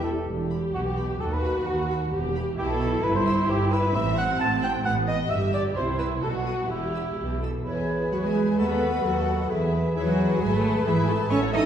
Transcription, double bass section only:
0, 0, Header, 1, 2, 480
1, 0, Start_track
1, 0, Key_signature, 1, "minor"
1, 0, Tempo, 465116
1, 283, Time_signature, 2, 2, 24, 8
1, 2194, Tempo, 454545
1, 6034, Tempo, 469484
1, 7969, Key_signature, 4, "major"
1, 8914, Tempo, 454890
1, 12162, End_track
2, 0, Start_track
2, 0, Title_t, "Double bass section"
2, 0, Program_c, 0, 48
2, 285, Note_on_c, 0, 28, 60
2, 688, Note_off_c, 0, 28, 0
2, 764, Note_on_c, 0, 35, 57
2, 1164, Note_off_c, 0, 35, 0
2, 1242, Note_on_c, 0, 39, 61
2, 1637, Note_off_c, 0, 39, 0
2, 1722, Note_on_c, 0, 39, 62
2, 2116, Note_off_c, 0, 39, 0
2, 2196, Note_on_c, 0, 28, 65
2, 2598, Note_off_c, 0, 28, 0
2, 2678, Note_on_c, 0, 35, 66
2, 3079, Note_off_c, 0, 35, 0
2, 3164, Note_on_c, 0, 31, 76
2, 3558, Note_off_c, 0, 31, 0
2, 3641, Note_on_c, 0, 31, 73
2, 4037, Note_off_c, 0, 31, 0
2, 4115, Note_on_c, 0, 33, 80
2, 4509, Note_off_c, 0, 33, 0
2, 4596, Note_on_c, 0, 33, 73
2, 4993, Note_off_c, 0, 33, 0
2, 5079, Note_on_c, 0, 33, 69
2, 5475, Note_off_c, 0, 33, 0
2, 5562, Note_on_c, 0, 31, 65
2, 5957, Note_off_c, 0, 31, 0
2, 6041, Note_on_c, 0, 36, 62
2, 6429, Note_off_c, 0, 36, 0
2, 6503, Note_on_c, 0, 35, 57
2, 6911, Note_off_c, 0, 35, 0
2, 6985, Note_on_c, 0, 28, 52
2, 7399, Note_off_c, 0, 28, 0
2, 7485, Note_on_c, 0, 35, 52
2, 7889, Note_off_c, 0, 35, 0
2, 7959, Note_on_c, 0, 40, 55
2, 8381, Note_off_c, 0, 40, 0
2, 8438, Note_on_c, 0, 40, 54
2, 8855, Note_off_c, 0, 40, 0
2, 8911, Note_on_c, 0, 39, 59
2, 9338, Note_off_c, 0, 39, 0
2, 9400, Note_on_c, 0, 39, 57
2, 9824, Note_off_c, 0, 39, 0
2, 9879, Note_on_c, 0, 40, 56
2, 10305, Note_off_c, 0, 40, 0
2, 10360, Note_on_c, 0, 40, 61
2, 10786, Note_off_c, 0, 40, 0
2, 10839, Note_on_c, 0, 32, 61
2, 11264, Note_off_c, 0, 32, 0
2, 11323, Note_on_c, 0, 32, 68
2, 11740, Note_off_c, 0, 32, 0
2, 11792, Note_on_c, 0, 33, 70
2, 12162, Note_off_c, 0, 33, 0
2, 12162, End_track
0, 0, End_of_file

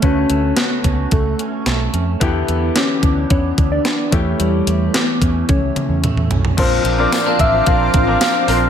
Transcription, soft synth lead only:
0, 0, Header, 1, 2, 480
1, 0, Start_track
1, 0, Tempo, 545455
1, 27, Time_signature, 4, 2, 24, 8
1, 7652, End_track
2, 0, Start_track
2, 0, Title_t, "Soft synth lead"
2, 0, Program_c, 0, 80
2, 23, Note_on_c, 0, 61, 93
2, 502, Note_on_c, 0, 59, 87
2, 515, Note_off_c, 0, 61, 0
2, 987, Note_on_c, 0, 57, 81
2, 1000, Note_off_c, 0, 59, 0
2, 1467, Note_off_c, 0, 57, 0
2, 2440, Note_on_c, 0, 61, 91
2, 2880, Note_off_c, 0, 61, 0
2, 2913, Note_on_c, 0, 61, 100
2, 3245, Note_off_c, 0, 61, 0
2, 3271, Note_on_c, 0, 62, 105
2, 3637, Note_on_c, 0, 57, 91
2, 3650, Note_off_c, 0, 62, 0
2, 3879, Note_on_c, 0, 55, 91
2, 3892, Note_off_c, 0, 57, 0
2, 4350, Note_off_c, 0, 55, 0
2, 4356, Note_on_c, 0, 59, 92
2, 4831, Note_on_c, 0, 61, 90
2, 4844, Note_off_c, 0, 59, 0
2, 5309, Note_off_c, 0, 61, 0
2, 5802, Note_on_c, 0, 72, 88
2, 6158, Note_on_c, 0, 74, 101
2, 6171, Note_off_c, 0, 72, 0
2, 6510, Note_off_c, 0, 74, 0
2, 6515, Note_on_c, 0, 76, 98
2, 6752, Note_on_c, 0, 77, 114
2, 6765, Note_off_c, 0, 76, 0
2, 7222, Note_off_c, 0, 77, 0
2, 7227, Note_on_c, 0, 77, 104
2, 7652, Note_off_c, 0, 77, 0
2, 7652, End_track
0, 0, End_of_file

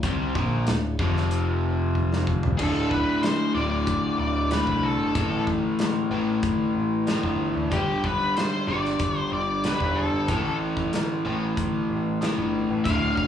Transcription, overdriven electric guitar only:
0, 0, Header, 1, 2, 480
1, 0, Start_track
1, 0, Tempo, 640342
1, 28, Time_signature, 4, 2, 24, 8
1, 9949, End_track
2, 0, Start_track
2, 0, Title_t, "Overdriven electric guitar"
2, 0, Program_c, 0, 29
2, 32, Note_on_c, 0, 48, 96
2, 34, Note_on_c, 0, 55, 102
2, 37, Note_on_c, 0, 60, 122
2, 262, Note_off_c, 0, 48, 0
2, 263, Note_off_c, 0, 55, 0
2, 265, Note_off_c, 0, 60, 0
2, 270, Note_on_c, 0, 46, 93
2, 273, Note_on_c, 0, 53, 93
2, 280, Note_on_c, 0, 58, 97
2, 501, Note_off_c, 0, 46, 0
2, 503, Note_off_c, 0, 53, 0
2, 506, Note_off_c, 0, 58, 0
2, 510, Note_on_c, 0, 38, 62
2, 515, Note_on_c, 0, 45, 67
2, 700, Note_off_c, 0, 38, 0
2, 703, Note_off_c, 0, 45, 0
2, 749, Note_on_c, 0, 41, 88
2, 756, Note_on_c, 0, 48, 91
2, 759, Note_on_c, 0, 53, 91
2, 1937, Note_off_c, 0, 41, 0
2, 1940, Note_on_c, 0, 38, 91
2, 1942, Note_off_c, 0, 48, 0
2, 1943, Note_off_c, 0, 53, 0
2, 1948, Note_on_c, 0, 45, 95
2, 1957, Note_on_c, 0, 50, 93
2, 2647, Note_off_c, 0, 38, 0
2, 2651, Note_off_c, 0, 45, 0
2, 2656, Note_off_c, 0, 50, 0
2, 2665, Note_on_c, 0, 50, 77
2, 2677, Note_on_c, 0, 45, 74
2, 2684, Note_on_c, 0, 38, 72
2, 3370, Note_off_c, 0, 50, 0
2, 3375, Note_off_c, 0, 38, 0
2, 3376, Note_off_c, 0, 45, 0
2, 3384, Note_on_c, 0, 38, 63
2, 3394, Note_on_c, 0, 45, 63
2, 3401, Note_on_c, 0, 50, 72
2, 3849, Note_off_c, 0, 38, 0
2, 3849, Note_off_c, 0, 45, 0
2, 3857, Note_off_c, 0, 50, 0
2, 3858, Note_on_c, 0, 45, 81
2, 3868, Note_on_c, 0, 52, 91
2, 3877, Note_on_c, 0, 57, 99
2, 4566, Note_off_c, 0, 45, 0
2, 4570, Note_off_c, 0, 57, 0
2, 4571, Note_off_c, 0, 52, 0
2, 4579, Note_on_c, 0, 57, 83
2, 4590, Note_on_c, 0, 52, 73
2, 4597, Note_on_c, 0, 45, 58
2, 5287, Note_off_c, 0, 57, 0
2, 5292, Note_off_c, 0, 45, 0
2, 5292, Note_off_c, 0, 52, 0
2, 5301, Note_on_c, 0, 45, 69
2, 5311, Note_on_c, 0, 52, 66
2, 5320, Note_on_c, 0, 57, 83
2, 5768, Note_off_c, 0, 45, 0
2, 5773, Note_off_c, 0, 52, 0
2, 5775, Note_on_c, 0, 43, 82
2, 5777, Note_off_c, 0, 57, 0
2, 5783, Note_on_c, 0, 50, 92
2, 5794, Note_on_c, 0, 55, 107
2, 6486, Note_off_c, 0, 43, 0
2, 6489, Note_off_c, 0, 50, 0
2, 6495, Note_off_c, 0, 55, 0
2, 6503, Note_on_c, 0, 55, 80
2, 6514, Note_on_c, 0, 50, 75
2, 6519, Note_on_c, 0, 43, 65
2, 7210, Note_off_c, 0, 55, 0
2, 7215, Note_off_c, 0, 50, 0
2, 7218, Note_off_c, 0, 43, 0
2, 7227, Note_on_c, 0, 43, 62
2, 7235, Note_on_c, 0, 50, 68
2, 7244, Note_on_c, 0, 55, 69
2, 7692, Note_off_c, 0, 43, 0
2, 7696, Note_off_c, 0, 50, 0
2, 7700, Note_off_c, 0, 55, 0
2, 7708, Note_on_c, 0, 45, 98
2, 7717, Note_on_c, 0, 52, 87
2, 7727, Note_on_c, 0, 57, 105
2, 8413, Note_off_c, 0, 45, 0
2, 8418, Note_off_c, 0, 52, 0
2, 8429, Note_off_c, 0, 57, 0
2, 8432, Note_on_c, 0, 57, 83
2, 8442, Note_on_c, 0, 52, 69
2, 8450, Note_on_c, 0, 45, 65
2, 9141, Note_off_c, 0, 52, 0
2, 9145, Note_off_c, 0, 45, 0
2, 9156, Note_on_c, 0, 45, 64
2, 9165, Note_on_c, 0, 52, 69
2, 9173, Note_off_c, 0, 57, 0
2, 9176, Note_on_c, 0, 57, 78
2, 9619, Note_off_c, 0, 45, 0
2, 9623, Note_off_c, 0, 52, 0
2, 9631, Note_on_c, 0, 38, 84
2, 9644, Note_on_c, 0, 45, 95
2, 9648, Note_off_c, 0, 57, 0
2, 9651, Note_on_c, 0, 50, 94
2, 9949, Note_off_c, 0, 38, 0
2, 9949, Note_off_c, 0, 45, 0
2, 9949, Note_off_c, 0, 50, 0
2, 9949, End_track
0, 0, End_of_file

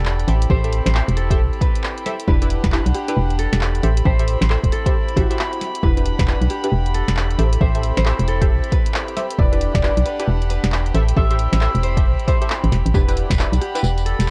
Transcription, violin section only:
0, 0, Header, 1, 2, 480
1, 0, Start_track
1, 0, Tempo, 444444
1, 540, Time_signature, 4, 2, 24, 8
1, 15445, End_track
2, 0, Start_track
2, 0, Title_t, "Violin section"
2, 0, Program_c, 0, 48
2, 0, Note_on_c, 0, 62, 77
2, 0, Note_on_c, 0, 67, 69
2, 0, Note_on_c, 0, 78, 68
2, 0, Note_on_c, 0, 83, 87
2, 284, Note_off_c, 0, 78, 0
2, 285, Note_off_c, 0, 62, 0
2, 301, Note_on_c, 0, 60, 76
2, 301, Note_on_c, 0, 64, 70
2, 2418, Note_off_c, 0, 83, 0
2, 2439, Note_off_c, 0, 60, 0
2, 2439, Note_off_c, 0, 64, 0
2, 2457, Note_on_c, 0, 78, 70
2, 2458, Note_on_c, 0, 62, 77
2, 2458, Note_on_c, 0, 83, 87
2, 4122, Note_off_c, 0, 62, 0
2, 4122, Note_off_c, 0, 78, 0
2, 4141, Note_on_c, 0, 60, 75
2, 4142, Note_on_c, 0, 64, 69
2, 6256, Note_off_c, 0, 67, 0
2, 6279, Note_off_c, 0, 60, 0
2, 6280, Note_off_c, 0, 64, 0
2, 6300, Note_on_c, 0, 78, 69
2, 6301, Note_on_c, 0, 62, 76
2, 6302, Note_on_c, 0, 67, 71
2, 7963, Note_off_c, 0, 78, 0
2, 7964, Note_off_c, 0, 62, 0
2, 7981, Note_on_c, 0, 60, 77
2, 7981, Note_on_c, 0, 64, 70
2, 10119, Note_off_c, 0, 60, 0
2, 10119, Note_off_c, 0, 64, 0
2, 10141, Note_on_c, 0, 62, 75
2, 10141, Note_on_c, 0, 78, 68
2, 11776, Note_off_c, 0, 83, 0
2, 11804, Note_off_c, 0, 62, 0
2, 11804, Note_off_c, 0, 78, 0
2, 11817, Note_on_c, 0, 64, 72
2, 11817, Note_on_c, 0, 83, 83
2, 11818, Note_on_c, 0, 60, 80
2, 13957, Note_off_c, 0, 64, 0
2, 13957, Note_off_c, 0, 83, 0
2, 13958, Note_off_c, 0, 60, 0
2, 13978, Note_on_c, 0, 62, 75
2, 13979, Note_on_c, 0, 83, 86
2, 13980, Note_on_c, 0, 78, 70
2, 15445, Note_off_c, 0, 62, 0
2, 15445, Note_off_c, 0, 67, 0
2, 15445, Note_off_c, 0, 78, 0
2, 15445, Note_off_c, 0, 83, 0
2, 15445, End_track
0, 0, End_of_file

